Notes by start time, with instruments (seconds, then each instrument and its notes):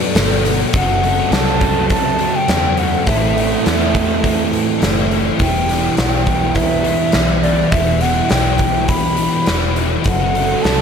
Already playing: fingered electric bass F#2, overdriven electric guitar B2 F#3 B3 D4, distorted electric guitar F#3 B3, twelve-string acoustic guitar A3 D4 F#4, string machine F#4 B4 D5 A5, flute D5
0.15 fingered electric bass G1, distorted electric guitar B2 F#3 B3, twelve-string acoustic guitar D4, snare, open hi-hat, tambourine
0.32 tambourine
0.45 distorted electric guitar F#3 B3, twelve-string acoustic guitar F#4, open hi-hat, tambourine
0.73 fingered electric bass F#1, distorted electric guitar F#2 C#3, overdriven electric guitar F#3 C4 F#4 A4, twelve-string acoustic guitar A3, flute F#5, kick, open hi-hat
0.77 distorted electric guitar F#3
1.03 distorted electric guitar C#3 F#3, twelve-string acoustic guitar A3, open hi-hat
1.31 fingered electric bass C2, distorted electric guitar F#2 C#3 F#3, twelve-string acoustic guitar C4, flute A5, snare, open hi-hat
1.61 distorted electric guitar C#3 F#3, twelve-string acoustic guitar A3, kick, open hi-hat
1.90 distorted electric guitar F#2 C#3 F#3, twelve-string acoustic guitar A3, flute A5, kick, open hi-hat
2.19 distorted electric guitar C#3 F#3, twelve-string acoustic guitar C4, open hi-hat
2.36 flute G5
2.48 fingered electric bass E2, distorted electric guitar F#2 C#3 F#3, twelve-string acoustic guitar A3, snare, open hi-hat
2.77 distorted electric guitar C#3 F#3, twelve-string acoustic guitar A3, flute F#5, open hi-hat
3.05 fingered electric bass A1, distorted electric guitar A2 E3 A3, twelve-string acoustic guitar E3, overdriven electric guitar A3 C4, flute E5, kick, open hi-hat
3.09 overdriven electric guitar E4 A4
3.36 twelve-string acoustic guitar E3, distorted electric guitar E3 A3, open hi-hat
3.64 fingered electric bass E2, distorted electric guitar A2 E3 A3, twelve-string acoustic guitar A3, flute E5, snare, open hi-hat
3.93 twelve-string acoustic guitar E3, distorted electric guitar E3 A3, kick, open hi-hat
4.23 distorted electric guitar A2 E3 A3, twelve-string acoustic guitar E3, kick, open hi-hat
4.51 distorted electric guitar E3 A3, twelve-string acoustic guitar A3, open hi-hat
4.79 fingered electric bass F#1, distorted electric guitar A2 E3 A3, twelve-string acoustic guitar E3, snare, open hi-hat
5.08 distorted electric guitar E3 A3, twelve-string acoustic guitar E3, open hi-hat
5.38 fingered electric bass E1, distorted electric guitar E2 B2 E3, twelve-string acoustic guitar E3, overdriven electric guitar E3 G3 B3, flute G5, kick, open hi-hat
5.43 overdriven electric guitar E4 B4
5.67 distorted electric guitar B2 E3, twelve-string acoustic guitar B3, snare, open hi-hat
5.97 fingered electric bass B1, distorted electric guitar E2 B2 E3, twelve-string acoustic guitar D4, flute G5, snare, open hi-hat
6.25 distorted electric guitar B2 E3, twelve-string acoustic guitar E3, kick, open hi-hat
6.54 distorted electric guitar E2 B2 E3, twelve-string acoustic guitar B3, flute E5, kick, open hi-hat
6.83 distorted electric guitar B2 E3, twelve-string acoustic guitar D4, open hi-hat
7.12 fingered electric bass B1, distorted electric guitar E2 B2 E3, twelve-string acoustic guitar E3, snare, open hi-hat
7.43 distorted electric guitar B2 E3, twelve-string acoustic guitar B3, flute D5, open hi-hat
7.72 fingered electric bass E1, distorted electric guitar E2 B2 E3, twelve-string acoustic guitar E3, flute E5, kick, open hi-hat
8.01 distorted electric guitar B2 E3, twelve-string acoustic guitar B3, flute F#5, snare, open hi-hat
8.29 fingered electric bass B1, distorted electric guitar E2 B2 E3, twelve-string acoustic guitar D4, flute G5, snare, open hi-hat
8.58 twelve-string acoustic guitar E3, distorted electric guitar E3, kick, open hi-hat
8.63 distorted electric guitar B2
8.88 distorted electric guitar E2 B2 E3, twelve-string acoustic guitar B3, flute B5, kick, open hi-hat
9.17 distorted electric guitar B2 E3, twelve-string acoustic guitar D4, open hi-hat
9.46 fingered electric bass E1, distorted electric guitar E2 B2, snare, open hi-hat
9.51 distorted electric guitar E3
9.76 distorted electric guitar E3, twelve-string acoustic guitar B3, open hi-hat
9.80 distorted electric guitar B2
10.04 fingered electric bass F#1, distorted electric guitar F#2 C#3, overdriven electric guitar F#3 C4 F#4 A4, twelve-string acoustic guitar A3, flute F#5, kick, open hi-hat
10.09 distorted electric guitar F#3
10.35 distorted electric guitar C#3 F#3, twelve-string acoustic guitar A3, open hi-hat
10.62 fingered electric bass C2, distorted electric guitar F#2, twelve-string acoustic guitar C4, flute A5, snare, open hi-hat
10.66 distorted electric guitar C#3 F#3